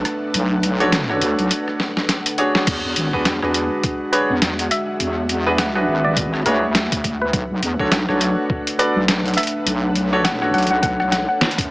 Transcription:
Already playing: analog synth pad A3 D4 B4, ambient pad D4 A4 B4 F#5
0.05 cross-stick, closed hi-hat
0.34 wobble bass B1, closed hi-hat
0.63 closed hi-hat
0.80 grand piano D4 F#4 A4 C#5, closed hi-hat
0.92 snare, closed hi-hat
1.09 grand piano D4 F#4 A4 C#5, cross-stick
1.21 wobble bass D2, closed hi-hat
1.39 wobble bass B1, closed hi-hat
1.51 closed hi-hat
1.68 cross-stick
1.80 snare
1.97 snare
2.09 snare, closed hi-hat
2.26 closed hi-hat
2.38 grand piano D4 F#4 G#4 C#5, closed hi-hat
2.55 snare
2.67 wobble bass E2, analog synth pad G#3 D4 F#4, kick, closed hi-hat, crash
2.85 wobble bass E2
2.96 wobble bass G#1, closed hi-hat
3.13 wobble bass E2, grand piano D4 F#4 G#4 B4, ambient pad G#4, kick
3.25 snare, closed hi-hat
3.42 wobble bass E2, grand piano D4 F#4 G#4 B4, cross-stick
3.47 ambient pad E5
3.54 closed hi-hat
3.83 kick, closed hi-hat
4.12 grand piano D4 F#4 G#4 C#5, synth pluck B4, closed hi-hat
4.30 wobble bass E2
4.42 wobble bass E2, snare, closed hi-hat
4.59 closed hi-hat
4.71 synth pluck E5, cross-stick, closed hi-hat
5.00 wobble bass E2, analog synth pad E5, closed hi-hat
5.29 closed hi-hat
5.46 grand piano D4 F#4 G#4 B4
5.58 synth pluck F#5, snare, closed hi-hat
5.75 grand piano D4 F#4 G#4 B4, synth pluck F#5, cross-stick
5.88 wobble bass G#1
6.04 synth pluck D5
6.17 kick, closed hi-hat
6.34 cross-stick
6.37 cross-stick
6.40 cross-stick
6.43 wobble bass D2, grand piano D4 F#4 G#4 C#5, synth pluck B4, cross-stick, closed hi-hat
6.75 snare, closed hi-hat
6.92 wobble bass D2, kick, closed hi-hat
7.04 kick, closed hi-hat
7.21 synth pluck B4
7.33 wobble bass B1, analog synth pad A3 D4 B4, kick, closed hi-hat
7.50 wobble bass B1
7.62 wobble bass E2, closed hi-hat
7.68 ambient pad A4
7.79 wobble bass B1, grand piano D4 F#4 A4 C#5, kick
7.92 snare, closed hi-hat
8.09 wobble bass B1, grand piano D4 F#4 A4 C#5, cross-stick
8.21 ambient pad B4, closed hi-hat
8.50 kick
8.67 closed hi-hat
8.79 grand piano D4 F#4 A4 D5, synth pluck B4, closed hi-hat
8.96 wobble bass B1
9.08 wobble bass B1, snare, closed hi-hat
9.25 closed hi-hat
9.28 closed hi-hat
9.34 synth pluck E5, closed hi-hat
9.38 cross-stick, closed hi-hat
9.43 closed hi-hat
9.47 closed hi-hat
9.66 wobble bass B1, analog synth pad C#5, closed hi-hat
9.95 closed hi-hat
10.13 grand piano D4 F#4 A4 C#5
10.24 synth pluck F#5, snare, closed hi-hat
10.42 grand piano D4 F#4 A4 C#5, synth pluck F#5, cross-stick
10.53 wobble bass B1, synth pluck F#5, closed hi-hat
10.58 closed hi-hat
10.63 closed hi-hat
10.67 synth pluck F#5, closed hi-hat
10.82 wobble bass B1, synth pluck F#5, kick, closed hi-hat
11.00 synth pluck F#5, cross-stick
11.12 synth pluck F#5, snare, closed hi-hat
11.29 synth pluck F#5
11.41 snare, closed hi-hat
11.51 closed hi-hat
11.58 wobble bass F#2, kick, closed hi-hat
11.61 closed hi-hat

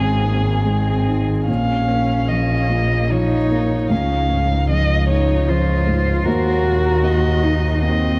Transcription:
Already playing: double bass G#1, felt piano G#2 D#3 G#3, cello C4, violin G#4
0.23 cello A#3, felt piano C4
0.65 felt piano G#3, cello C4
1.07 felt piano D#3
1.47 double bass A#1, felt piano A#2, cello C#4, violin F5
1.88 felt piano A#3
2.28 felt piano F3, violin D#5
2.69 cello A#3, felt piano F4
3.10 felt piano F3, cello D#4, violin C#5
3.51 felt piano A#3
3.90 felt piano C#2, double bass C#2, cello C#4, violin F5
4.29 felt piano G#2
4.69 felt piano F3, violin D#5
5.08 cello D#4, felt piano F4, violin C#5
5.48 felt piano F3, cello F4, violin C5
5.87 felt piano G#2
6.25 felt piano D#2, double bass D#2, cello F#4, violin A#4
6.64 felt piano A#2
7.03 felt piano A#3, violin D#5
7.42 felt piano D#4, cello D#4
7.82 felt piano A#3, cello C4, violin D#5

